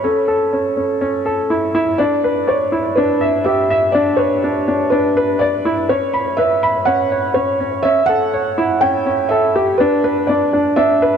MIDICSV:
0, 0, Header, 1, 3, 480
1, 0, Start_track
1, 0, Tempo, 487805
1, 49, Time_signature, 4, 2, 24, 8
1, 10992, End_track
2, 0, Start_track
2, 0, Title_t, "Felt piano"
2, 0, Program_c, 0, 0
2, 37, Note_on_c, 0, 69, 73
2, 1444, Note_off_c, 0, 69, 0
2, 1951, Note_on_c, 0, 74, 85
2, 2445, Note_on_c, 0, 73, 72
2, 2455, Note_off_c, 0, 74, 0
2, 2906, Note_on_c, 0, 71, 80
2, 2942, Note_off_c, 0, 73, 0
2, 3389, Note_on_c, 0, 76, 82
2, 3412, Note_off_c, 0, 71, 0
2, 3858, Note_on_c, 0, 74, 87
2, 3894, Note_off_c, 0, 76, 0
2, 4100, Note_on_c, 0, 73, 83
2, 4121, Note_off_c, 0, 74, 0
2, 4821, Note_on_c, 0, 71, 85
2, 4856, Note_off_c, 0, 73, 0
2, 5303, Note_on_c, 0, 74, 84
2, 5330, Note_off_c, 0, 71, 0
2, 5650, Note_off_c, 0, 74, 0
2, 5799, Note_on_c, 0, 73, 87
2, 6266, Note_on_c, 0, 76, 88
2, 6298, Note_off_c, 0, 73, 0
2, 6744, Note_on_c, 0, 78, 97
2, 6772, Note_off_c, 0, 76, 0
2, 7224, Note_on_c, 0, 73, 85
2, 7251, Note_off_c, 0, 78, 0
2, 7701, Note_on_c, 0, 76, 96
2, 7731, Note_off_c, 0, 73, 0
2, 7930, Note_on_c, 0, 78, 103
2, 7962, Note_off_c, 0, 76, 0
2, 8667, Note_on_c, 0, 79, 98
2, 8692, Note_off_c, 0, 78, 0
2, 9139, Note_on_c, 0, 76, 93
2, 9173, Note_off_c, 0, 79, 0
2, 9488, Note_off_c, 0, 76, 0
2, 9621, Note_on_c, 0, 71, 90
2, 10106, Note_on_c, 0, 74, 88
2, 10130, Note_off_c, 0, 71, 0
2, 10590, Note_on_c, 0, 76, 88
2, 10612, Note_off_c, 0, 74, 0
2, 10992, Note_off_c, 0, 76, 0
2, 10992, End_track
3, 0, Start_track
3, 0, Title_t, "Upright piano"
3, 0, Program_c, 1, 0
3, 0, Control_c, 1, 64, 127
3, 40, Note_on_c, 1, 61, 71
3, 62, Control_c, 1, 64, 0
3, 206, Control_c, 1, 64, 127
3, 273, Note_off_c, 1, 61, 0
3, 274, Note_on_c, 1, 69, 62
3, 509, Note_off_c, 1, 69, 0
3, 520, Note_on_c, 1, 61, 62
3, 741, Note_off_c, 1, 61, 0
3, 756, Note_on_c, 1, 61, 57
3, 899, Note_off_c, 1, 61, 0
3, 997, Note_on_c, 1, 61, 74
3, 1140, Note_off_c, 1, 61, 0
3, 1235, Note_on_c, 1, 69, 65
3, 1470, Note_off_c, 1, 69, 0
3, 1478, Note_on_c, 1, 64, 63
3, 1704, Note_off_c, 1, 64, 0
3, 1719, Note_on_c, 1, 64, 87
3, 1952, Note_off_c, 1, 64, 0
3, 1962, Note_on_c, 1, 62, 73
3, 1982, Control_c, 1, 64, 0
3, 2102, Note_off_c, 1, 62, 0
3, 2131, Control_c, 1, 64, 127
3, 2205, Note_on_c, 1, 71, 60
3, 2435, Note_off_c, 1, 71, 0
3, 2435, Note_on_c, 1, 74, 64
3, 2670, Note_off_c, 1, 74, 0
3, 2677, Note_on_c, 1, 64, 63
3, 2911, Note_off_c, 1, 64, 0
3, 2924, Note_on_c, 1, 62, 76
3, 3155, Note_off_c, 1, 62, 0
3, 3158, Note_on_c, 1, 76, 67
3, 3392, Note_off_c, 1, 76, 0
3, 3401, Note_on_c, 1, 67, 65
3, 3633, Note_off_c, 1, 67, 0
3, 3645, Note_on_c, 1, 76, 71
3, 3875, Note_off_c, 1, 76, 0
3, 3882, Note_on_c, 1, 62, 78
3, 4113, Note_off_c, 1, 62, 0
3, 4119, Note_on_c, 1, 71, 62
3, 4352, Note_off_c, 1, 71, 0
3, 4366, Note_on_c, 1, 62, 62
3, 4590, Note_off_c, 1, 62, 0
3, 4605, Note_on_c, 1, 62, 61
3, 4744, Note_off_c, 1, 62, 0
3, 4839, Note_on_c, 1, 62, 75
3, 4981, Note_off_c, 1, 62, 0
3, 5085, Note_on_c, 1, 71, 72
3, 5315, Note_off_c, 1, 71, 0
3, 5323, Note_on_c, 1, 74, 67
3, 5554, Note_off_c, 1, 74, 0
3, 5563, Note_on_c, 1, 64, 70
3, 5794, Note_off_c, 1, 64, 0
3, 5799, Note_on_c, 1, 61, 76
3, 5821, Control_c, 1, 64, 0
3, 6002, Control_c, 1, 64, 127
3, 6032, Note_off_c, 1, 61, 0
3, 6037, Note_on_c, 1, 83, 60
3, 6271, Note_off_c, 1, 83, 0
3, 6281, Note_on_c, 1, 71, 62
3, 6513, Note_off_c, 1, 71, 0
3, 6524, Note_on_c, 1, 83, 63
3, 6754, Note_off_c, 1, 83, 0
3, 6758, Note_on_c, 1, 61, 76
3, 6992, Note_off_c, 1, 61, 0
3, 7004, Note_on_c, 1, 73, 66
3, 7235, Note_off_c, 1, 73, 0
3, 7239, Note_on_c, 1, 61, 67
3, 7465, Note_off_c, 1, 61, 0
3, 7480, Note_on_c, 1, 61, 67
3, 7621, Note_off_c, 1, 61, 0
3, 7720, Note_on_c, 1, 61, 75
3, 7741, Control_c, 1, 64, 0
3, 7861, Note_off_c, 1, 61, 0
3, 7920, Control_c, 1, 64, 127
3, 7960, Note_on_c, 1, 69, 65
3, 8193, Note_off_c, 1, 69, 0
3, 8203, Note_on_c, 1, 73, 62
3, 8434, Note_off_c, 1, 73, 0
3, 8441, Note_on_c, 1, 64, 65
3, 8673, Note_off_c, 1, 64, 0
3, 8679, Note_on_c, 1, 61, 76
3, 8902, Note_off_c, 1, 61, 0
3, 8917, Note_on_c, 1, 61, 68
3, 9151, Note_off_c, 1, 61, 0
3, 9158, Note_on_c, 1, 69, 64
3, 9391, Note_off_c, 1, 69, 0
3, 9404, Note_on_c, 1, 67, 72
3, 9634, Note_off_c, 1, 67, 0
3, 9645, Note_on_c, 1, 62, 78
3, 9661, Control_c, 1, 64, 0
3, 9827, Control_c, 1, 64, 127
3, 9875, Note_off_c, 1, 62, 0
3, 9880, Note_on_c, 1, 71, 64
3, 10112, Note_off_c, 1, 71, 0
3, 10127, Note_on_c, 1, 62, 63
3, 10349, Note_off_c, 1, 62, 0
3, 10364, Note_on_c, 1, 62, 62
3, 10503, Note_off_c, 1, 62, 0
3, 10599, Note_on_c, 1, 62, 74
3, 10741, Note_off_c, 1, 62, 0
3, 10845, Note_on_c, 1, 71, 71
3, 10992, Note_off_c, 1, 71, 0
3, 10992, End_track
0, 0, End_of_file